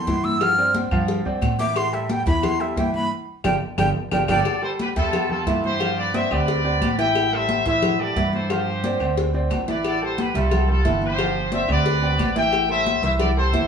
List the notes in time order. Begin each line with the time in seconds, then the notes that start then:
Already playing: C6
0.07 G2 E3 E4 E5, cowbell, high conga, low agogo
0.24 E6, high conga, low agogo
0.41 F3 F4 F5 F6, cowbell, high conga, low agogo, claves
0.58 C4 C5 D5, high conga
0.75 cowbell, high conga, low agogo
0.91 G2 F3 F4 F5, high conga, low agogo, claves
1.08 cowbell, high conga
1.25 G2 C4 C5 D5, high conga, low agogo
1.42 A2, cowbell, high conga, low agogo, claves
1.59 E3 E4 E5 D6, cowbell, high conga
1.75 C6, cowbell, high conga, low agogo, claves
1.93 G3 G4 A4 E5, high conga
2.09 G5, cowbell, high conga, low agogo
2.26 E2 E3 E4 E5 B5, cowbell
2.43 C6, cowbell, high conga, low conga, low agogo, claves
2.60 G3 G4 A4 E5, high conga
2.76 G2 E3 E4 E5 G5, cowbell, high conga, low agogo
2.94 B5, high conga, low agogo
3.44 G1 D4 F4 G4 G5, cowbell, low conga, high timbale, claves
3.78 G1 D4 F4 G4 G5, cowbell, low conga, high timbale, claves
4.11 G1 D4 F4 G4 G5, cowbell, low conga, high timbale, claves
4.28 G1 D4 F4 G4 A4 D5 G5, cowbell, low conga, high timbale, claves
4.45 cowbell, high conga, low agogo, claves
4.62 G3 G4 A4 C5, high conga
4.79 G4 B4, cowbell, high conga, low agogo
4.96 E2 G3 F4 G4 A4 E5, cowbell
5.13 cowbell, high conga, low conga, low agogo, claves
5.29 G3 F4 G4 A4, high conga, low conga
5.46 G2 E3 E4 E5, cowbell, high conga, low agogo
5.64 G4 C5, high conga, low agogo
5.80 F3 F4 F5, cowbell, high conga, low agogo, claves
5.98 B4 D5, high conga
6.14 C4 C5 D5 E5, cowbell, high conga, low agogo
6.31 D2 C4 G4 B4 D5, high conga, low agogo, claves
6.48 cowbell, high conga
6.64 C4 G4 D5, high conga, low agogo
6.81 A1, cowbell, high conga, low agogo, claves
6.98 E3 E4 E5 G5, cowbell, high conga
7.15 cowbell, high conga, low agogo, claves
7.32 G3 G4 A4 C5 E5, high conga
7.49 cowbell, high conga, low agogo
7.66 A2 E3 E4 C5 E5, cowbell
7.82 cowbell, high conga, low conga, low agogo, claves
7.99 G3 G4 A4 B4 D5, high conga
8.16 G2 E3 E4 E5, cowbell, high conga, low agogo
8.33 A4 C5, high conga, low agogo
8.50 F3 F4 G4 C5 F5, cowbell, high conga, low agogo, claves
8.67 high conga
8.84 C4 C5 D5, cowbell, high conga, low agogo
9.00 D2 C4 C5 D5, low agogo, claves
9.17 cowbell, high conga
9.33 C4 C5 D5, high conga, low agogo
9.50 A1, cowbell, high conga, low timbale, low agogo, claves
9.68 E3 E4 B4 D5 E5, cowbell, high conga
9.84 A4 D5, cowbell, high conga, low agogo, claves
10.01 G3 G4 A4 C5, high conga
10.18 G4 B4, cowbell, high conga, low agogo
10.34 C2 G3 F4 G4 A4 E5, cowbell
10.51 cowbell, high conga, low conga, low agogo, claves
10.68 G3 F4 G4 A4, high conga, low conga
10.85 G1 E3 E4 E5, cowbell, high conga, low agogo
11.02 G4 C5, high conga, low agogo
11.18 F3 F4 F5, cowbell, high conga, low agogo, claves
11.35 high conga
11.52 C4 C5 D5 E5, cowbell, high conga, low agogo
11.68 D2 C4 G4 B4 D5, high conga, low agogo, claves
11.86 cowbell, high conga
12.02 C4 G4 D5, high conga, low agogo
12.18 A1, cowbell, high conga, low agogo, claves
12.36 E3 E4 E5 G5, cowbell, high conga
12.52 cowbell, high conga, low agogo, claves
12.69 G3 G4 A4 C5 E5, high conga
12.86 cowbell, high conga, low agogo
13.02 C2 E3 E4 C5 E5, cowbell
13.19 A4 D5, cowbell, high conga, low conga, low agogo, claves
13.36 G3 G4 A4 C5, high conga
13.52 G1 E3 E4 E5, cowbell, high conga, low agogo